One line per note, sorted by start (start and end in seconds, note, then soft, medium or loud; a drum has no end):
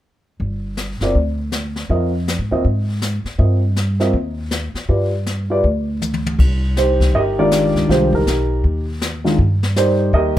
0.40 0.97 G1 medium
0.40 brush sweep soft
0.40 kick soft
0.77 snare soft
0.77 hi-hat pedal soft
1.00 1.13 F#1 soft
1.00 1.14 C4 medium
1.00 1.14 F4 soft
1.00 1.14 A#4 soft
1.00 1.14 D5 medium
1.00 snare soft
1.15 1.86 D2 medium
1.15 brush sweep soft
1.15 kick soft
1.52 snare soft
1.52 hi-hat pedal medium
1.76 snare soft
1.89 2.36 F2 medium
1.89 2.11 C4 soft
1.89 2.11 F4 soft
1.89 2.11 A#4 soft
1.89 2.11 D#5 medium
1.89 brush sweep soft
1.89 kick soft
2.28 snare soft
2.28 hi-hat pedal soft
2.38 2.50 G#2 soft
2.51 2.63 D#2 medium
2.51 2.63 C4 medium
2.51 2.64 F4 soft
2.51 2.64 A#4 soft
2.51 2.64 D#5 medium
2.65 3.22 G#2 medium
2.65 brush sweep soft
2.65 kick soft
3.02 snare soft
3.02 hi-hat pedal soft
3.24 muted upright bass stroke soft
3.24 snare soft
3.38 4.10 G2 medium
3.38 3.60 C4 soft
3.38 3.60 F4 soft
3.38 3.61 A#4 soft
3.38 3.60 D#5 soft
3.38 brush sweep soft
3.38 kick soft
3.76 snare soft
3.76 hi-hat pedal soft
4.00 4.12 C4 medium
4.00 4.13 F4 medium
4.00 4.13 A#4 medium
4.00 4.13 D#5 medium
4.00 snare soft
4.13 4.71 D#2 medium
4.13 brush sweep soft
4.13 kick soft
4.51 snare soft
4.51 hi-hat pedal medium
4.74 muted upright bass stroke soft
4.74 snare soft
4.89 5.60 G2 medium
4.89 5.10 F4 soft
4.89 5.10 G4 soft
4.89 5.10 B4 soft
4.89 5.11 D5 soft
4.89 brush sweep soft
4.89 kick soft
5.26 snare soft
5.26 hi-hat pedal soft
5.50 5.62 F4 medium
5.50 5.63 G4 soft
5.50 5.63 B4 medium
5.50 5.63 D5 medium
5.64 6.35 D2 medium
5.64 brush sweep soft
5.64 kick soft
6.02 hi-hat pedal soft
6.02 high tom soft
6.14 high tom soft
6.26 high tom medium
6.38 7.10 C2 medium
6.38 brush sweep soft
6.38 kick medium
6.38 ride medium
6.77 7.48 D#4 soft
6.77 7.14 G4 medium
6.77 7.15 C5 medium
6.77 snare soft
6.77 hi-hat pedal soft
7.00 kick soft
7.00 snare soft
7.14 7.71 G1 medium
7.14 7.38 G4 medium
7.14 7.38 A#4 medium
7.14 7.20 D#5 medium
7.14 brush sweep soft
7.14 kick soft
7.39 7.86 D#3 medium
7.39 7.86 G#3 medium
7.39 7.86 D4 medium
7.39 7.87 F4 medium
7.39 7.89 G4 medium
7.39 8.09 A#4 medium
7.39 7.91 D5 medium
7.51 snare soft
7.51 hi-hat pedal medium
7.74 7.87 C#2 medium
7.74 snare soft
7.88 8.23 C2 medium
7.88 8.09 D#3 medium
7.88 8.10 G#3 soft
7.88 8.10 D4 soft
7.88 8.13 D#4 medium
7.88 8.10 F4 medium
7.88 8.13 G4 medium
7.88 8.12 C5 medium
7.88 brush sweep soft
7.88 kick soft
7.88 snare soft
8.13 8.84 D#4 soft
8.13 8.84 G4 soft
8.13 8.61 A#4 medium
8.13 kick soft
8.26 8.61 B1 medium
8.26 snare soft
8.26 hi-hat pedal soft
8.64 9.35 D#2 medium
8.64 brush sweep soft
8.64 kick soft
9.02 snare medium
9.02 hi-hat pedal medium
9.24 9.37 D#3 medium
9.24 9.36 G#3 medium
9.24 9.37 D4 soft
9.24 9.37 F4 medium
9.24 snare soft
9.38 10.09 G2 medium
9.38 brush sweep soft
9.38 kick soft
9.63 snare soft
9.76 10.32 G3 soft
9.76 10.39 D#4 medium
9.76 10.14 G4 soft
9.76 10.13 A#4 soft
9.76 10.11 C5 medium
9.76 10.32 D5 soft
9.76 snare soft
9.76 hi-hat pedal soft
10.13 10.39 D#2 medium
10.13 10.37 G4 medium
10.13 10.37 A#4 medium
10.13 10.38 D#5 medium
10.13 brush sweep soft
10.13 kick soft